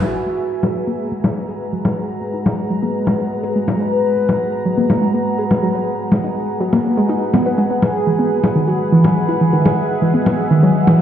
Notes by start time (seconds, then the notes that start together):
0.02 G#3 F#4 G#4 B4 F#5 A#5, crash, low conga
0.26 G#3
0.39 D#4
0.63 low conga
0.75 F#3
0.87 A#3
1.12 G#3
1.24 A#3, low conga
1.48 G#4
1.61 G#3
1.73 F#3
1.85 B4, low conga
2.21 G#3
2.34 D#4
2.46 low conga
2.70 F#3
2.83 A#3
3.07 G#3, low conga
3.19 A#3
3.43 G#4
3.56 G#3
3.68 F#3, low conga
3.80 B4
3.92 B4
4.17 G#3
4.29 D#4, low conga
4.65 F#3
4.78 A#3
4.90 low conga
5.02 G#3
5.14 A#3
5.38 G#4
5.51 G#3, low conga
5.63 F#3
5.75 B4
6.12 G#3, low conga
6.24 D#4
6.61 F#3
6.73 A#3, low conga
6.97 G#3
7.09 D#4
7.34 B3, low conga
7.46 B4
7.58 G#3
7.70 B3
7.82 G#3 G#4 E5, low conga
8.07 E3
8.19 B3
8.44 low conga
8.56 D#3
8.68 F#3
8.92 E3
9.04 F#3, low conga
9.29 E4
9.41 E3
9.53 D#3
9.65 G#4, low conga
10.02 E3
10.14 B3
10.26 low conga
10.51 D#3
10.63 F#3
10.87 E3, low conga